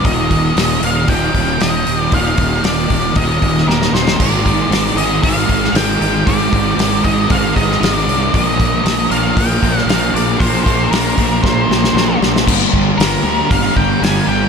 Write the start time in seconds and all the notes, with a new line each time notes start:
0.03 D#1 D#2 A#2 D#5, kick, open hi-hat
0.07 D#3
0.29 A#2 D#3, kick, open hi-hat
0.55 D#1 D#2 A#2 D#3, snare, open hi-hat
0.81 D#1 A#2 D#3 F5, open hi-hat
1.07 D#1 D#2 A#2 D#3 G5, kick, open hi-hat
1.33 D#1 A#2 D#3, kick, open hi-hat
1.58 D#1 D#2 A#2 D#3 D#5, snare, open hi-hat
1.87 D#1, open hi-hat
2.01 D5
2.11 D#1 D#2 A#2 D#3, kick, open hi-hat
2.15 F5
2.37 D#1 A#2 D#3, kick, open hi-hat
2.62 D#1 D#2 A#2 D#3 D5, snare, open hi-hat
2.88 D#1 A#2 D#3, kick, open hi-hat
3.14 D#1 D#2 A#2 D#3 D#5, kick, open hi-hat
3.40 D#1 A#2 D#3, kick, open hi-hat
3.58 snare
3.67 D#1 D#2 A#2 D#3 A#4, snare
3.82 snare
3.93 D#1 C5, snare
4.08 snare
4.17 G#1 G#2 D#3 G#3 D5, kick, open hi-hat, crash
4.44 D#3 G#3, kick, open hi-hat
4.69 G#1 G#2 D#3, snare, open hi-hat
4.74 G#3
4.95 G#1 G#3 D#5, open hi-hat
4.99 D#3
5.22 G#1 G#2 D#3 G#3 F5, kick, open hi-hat
5.47 G#1 D#3 G#3, kick, open hi-hat
5.64 snare
5.73 G#1 G#2 D#3 G5, snare, open hi-hat
5.77 G#3
6.01 G#1, open hi-hat
6.25 G#1 G#2 D#3 G#3 D5, kick, open hi-hat
6.51 G#1 D#3 G#3, kick, open hi-hat
6.77 G#1 G#2 D#3 G#3, snare, open hi-hat
7.03 G#1 D#3 G#3 D#5, kick, open hi-hat
7.29 G#1 G#2 D#3 G#3 F5, kick, open hi-hat
7.53 G#1 G#3 D#5, kick
7.57 D#3, open hi-hat
7.71 snare
7.80 G#1 G#2 D#3 G#3 D#5, snare, open hi-hat
7.92 D5
8.08 C2, open hi-hat
8.32 A#1 A#2 F3 A#3 D5, kick, open hi-hat
8.46 D#5
8.57 A#3, kick, open hi-hat
8.62 F3
8.84 A#1 A#2 F3 A#3, snare, open hi-hat
9.10 A#1 F3 A#3 F5, open hi-hat
9.36 A#1 A#2 F3 A#3 G5, kick, open hi-hat
9.62 A#1 F3 A#3, kick, open hi-hat
9.78 F5, snare
9.86 A#1 A#2 F3 F5, open hi-hat
9.90 A#3, snare
10.13 A#1 D5, open hi-hat
10.39 A#1 A#2 F3 A#3 C5, kick, open hi-hat
10.64 A#1 F3 A#3 C5, kick, open hi-hat
10.90 A#1 A#2 F3 A#3 A#4, snare, open hi-hat
11.16 A#1 F3 A#3, kick, open hi-hat
11.41 A#1 A#2 F3 A#3 C5, kick
11.45 snare
11.68 A#1 F3 A#3, snare
11.84 snare
11.94 A#1 A#2 F3 A#3, snare
12.21 A#1, snare
12.36 snare
12.45 G1 G2 D3 G3, kick, crash
12.71 G1 D3 G3, kick
12.97 G1 G2 D3 G3 A#4, snare, open hi-hat
13.23 D2 D3 G3
13.49 G1 G2 D3 G3 F5, kick, open hi-hat
13.75 G1 D3 G3 G5, kick
14.00 G1 G2 D3 G3 G#5, open hi-hat
14.05 snare
14.26 G1 D3 G3 G5